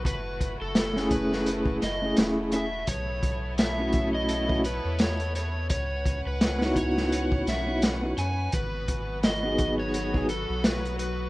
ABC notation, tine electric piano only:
X:1
M:4/4
L:1/16
Q:"Swing 16ths" 1/4=85
K:G#phr
V:1 name="Tine electric piano"
z4 z [A,CEG]4- [A,CEG] z [A,CEG]3 [A,CEG] z | z4 z [A,CEF]4 [A,CEF] z6 | z4 z [B,DEF]4- [B,DEF] z [B,DEF] z [B,DEF] z2 | z4 z [B,DFG]4 [B,DFG] z6 |]